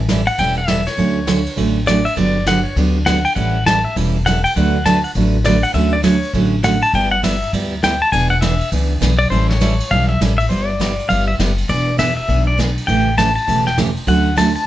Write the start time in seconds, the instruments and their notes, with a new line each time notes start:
Already playing: upright bass A1
0.09 steel-string acoustic guitar E3 G3 C#4 E4 A4, kick, snare, hi-hat pedal, ride
0.27 pedal steel guitar F#5, ride
0.38 upright bass E1, steel-string acoustic guitar E3 G3 C#4 E4 A4, pedal steel guitar G5, kick, ride
0.58 pedal steel guitar F#5
0.68 steel-string acoustic guitar E3 G3 C#4 E4 A4, pedal steel guitar E5, kick, snare, hi-hat pedal, ride
0.87 pedal steel guitar C#5, snare, ride
0.97 upright bass D2, steel-string acoustic guitar D3 F#3 A3 C#4 F#4, kick, ride
1.27 steel-string acoustic guitar D3 F#3 A3 C#4 F#4, kick, snare, hi-hat pedal, ride
1.46 ride
1.56 upright bass A1, steel-string acoustic guitar D3 F#3 A3 C#4 F#4, kick, ride
1.86 steel-string acoustic guitar D3 F#3 A3 C#4 F#4, pedal steel guitar D5, kick, snare, hi-hat pedal, ride
2.05 pedal steel guitar E5, ride
2.16 upright bass G1, steel-string acoustic guitar D3 F#3 B3 D4 G4, pedal steel guitar D5, kick, ride
2.46 steel-string acoustic guitar D3 F#3 B3 D4 G4, pedal steel guitar F#5, kick, snare, hi-hat pedal, ride
2.64 pedal steel guitar C#5
2.76 upright bass D2, steel-string acoustic guitar D3 F#3 B3 D4 G4, kick, ride
3.06 steel-string acoustic guitar D3 F#3 B3 D4 G4, pedal steel guitar F#5, kick, snare, hi-hat pedal, ride
3.25 pedal steel guitar G5, ride
3.35 upright bass A1, steel-string acoustic guitar E3 G3 C#4 E4 A4, pedal steel guitar F#5, kick, ride
3.66 steel-string acoustic guitar E3 G3 C#4 E4 A4, pedal steel guitar A5, kick, snare, hi-hat pedal, ride
3.85 pedal steel guitar E5
3.96 upright bass E1, steel-string acoustic guitar E3 G3 C#4 E4 A4, kick, ride
4.26 steel-string acoustic guitar E3 G3 C#4 E4 A4, pedal steel guitar F#5, kick, snare, hi-hat pedal, ride
4.44 pedal steel guitar G5, ride
4.56 upright bass D2, steel-string acoustic guitar D3 F#3 A3 D4 F#4 B4, pedal steel guitar F#5, kick, ride
4.85 steel-string acoustic guitar D3 F#3 A3 D4 F#4 B4, pedal steel guitar A5, kick, snare, hi-hat pedal, ride
5.04 pedal steel guitar F#5, ride
5.15 upright bass A1, steel-string acoustic guitar D3 F#3 A3 D4 F#4 B4, kick, ride
5.44 steel-string acoustic guitar D3 F#3 A3 D4 F#4 B4, pedal steel guitar D5, kick, snare, hi-hat pedal, ride
5.63 pedal steel guitar F#5, ride
5.74 upright bass D2, steel-string acoustic guitar D3 F#3 A3 C#4 F#4, pedal steel guitar E5, kick, ride
5.93 pedal steel guitar D5
6.03 steel-string acoustic guitar D3 F#3 A3 C#4 F#4, pedal steel guitar C#5, kick, snare, hi-hat pedal, ride
6.23 ride
6.34 upright bass A1, steel-string acoustic guitar D3 F#3 A3 C#4 F#4, kick, ride
6.63 steel-string acoustic guitar D3 F#3 A3 C#4 F#4, pedal steel guitar F#5, kick, snare, hi-hat pedal, ride
6.82 pedal steel guitar A5, ride
6.93 upright bass G1, steel-string acoustic guitar G3 B3 E4 G4, pedal steel guitar G5, kick, ride
7.11 pedal steel guitar F#5
7.23 steel-string acoustic guitar G3 B3 E4 G4, pedal steel guitar E5, kick, snare, hi-hat pedal, ride
7.42 ride
7.53 upright bass D2, steel-string acoustic guitar G3 B3 E4 G4, kick, ride
7.83 steel-string acoustic guitar G3 B3 E4 G4, pedal steel guitar G5, kick, snare, hi-hat pedal, ride
8.02 pedal steel guitar A5
8.12 upright bass E1, steel-string acoustic guitar E3 B3 D4 G#4, pedal steel guitar G#5, kick, ride
8.30 pedal steel guitar F#5
8.41 steel-string acoustic guitar E3 B3 D4 G#4, pedal steel guitar E5, kick, snare, hi-hat pedal, ride
8.61 ride
8.72 upright bass C#2, steel-string acoustic guitar E3 B3 D4 G#4, kick, ride
9.01 upright bass B1, steel-string acoustic guitar E3 B3 D4 G#4, kick, snare, hi-hat pedal, ride
9.19 pedal steel guitar D5, ride
9.30 upright bass A1, steel-string acoustic guitar E3 G3 C#4 E4 A4, pedal steel guitar C5, kick, ride
9.50 pedal steel guitar C#5, snare
9.61 steel-string acoustic guitar E3 G3 C#4 E4 A4, kick, snare, hi-hat pedal, ride
9.80 ride
9.91 upright bass B1, steel-string acoustic guitar E3 G3 C#4 E4 A4, pedal steel guitar F5, kick
10.09 pedal steel guitar E5
10.21 upright bass A1, steel-string acoustic guitar E3 G3 C#4 E4 A4, kick, snare, hi-hat pedal, ride
10.38 pedal steel guitar E5, ride
10.49 upright bass G1, steel-string acoustic guitar G3 B3 E4 G4, pedal steel guitar C5, kick, ride
10.66 pedal steel guitar D5
10.79 steel-string acoustic guitar G3 B3 E4 G4, kick, snare, hi-hat pedal, ride
10.99 ride
11.09 upright bass G1, steel-string acoustic guitar G3 B3 E4 G4, pedal steel guitar F5, kick, ride
11.28 pedal steel guitar E5
11.39 upright bass F#1, steel-string acoustic guitar G3 B3 E4 G4, kick, snare, hi-hat pedal, ride
11.58 ride
11.69 upright bass E1, steel-string acoustic guitar E3 B3 D4 G#4, pedal steel guitar D5, kick, ride
11.98 steel-string acoustic guitar E3 B3 D4 G#4, pedal steel guitar E5, kick, snare, hi-hat pedal, ride
12.17 pedal steel guitar E5
12.28 upright bass B1, steel-string acoustic guitar E3 B3 D4 G#4, kick, ride
12.47 pedal steel guitar D5
12.58 steel-string acoustic guitar E3 B3 D4 G#4, kick, snare, hi-hat pedal, ride
12.78 ride
12.87 upright bass A1, steel-string acoustic guitar C#3 E3 A3 C#4 G4, pedal steel guitar G5, kick, ride
13.18 steel-string acoustic guitar C#3 E3 A3 C#4 G4, pedal steel guitar A5, kick, snare, hi-hat pedal, ride
13.36 pedal steel guitar A5, ride
13.47 upright bass E1, steel-string acoustic guitar C#3 E3 A3 C#4 G4, kick, ride
13.67 pedal steel guitar G5, snare
13.78 steel-string acoustic guitar C#3 E3 A3 C#4 G4, kick, snare, hi-hat pedal, ride
13.96 ride
14.07 upright bass D2, steel-string acoustic guitar D3 F#3 A3 C#4 F#4, pedal steel guitar F#5, kick, ride
14.36 steel-string acoustic guitar D3 F#3 A3 C#4 F#4, pedal steel guitar A5, kick, snare, hi-hat pedal, ride
14.56 pedal steel guitar A5, ride